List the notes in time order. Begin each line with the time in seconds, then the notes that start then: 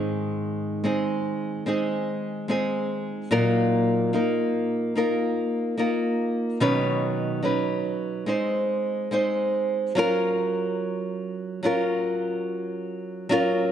Already playing: G#2 D#3 G#3 C4 D#4 G#4
0.84 G#3 C4 D#4 G#4
1.66 G#3 C4 D#4 G#4
2.48 G#3 C4 D#4 G#4
3.31 A#2 F#3 A#3 D#4 F4 A#4
4.13 A#3 D#4 F4 A#4
4.96 A#3 D#4 F4 A#4
5.77 A#3 D#4 F4 A#4
6.60 B2 D#3 F#3 C#4 D#4 B4
7.43 F#3 C#4 D#4 B4
8.26 G#3 C4 D#4 C5
9.11 G#3 C4 D#4 C5
9.95 F#3 C#4 F4 A#4
11.63 F#3 C#4 F4 A#4
13.29 F#3 C#4 F4 A#4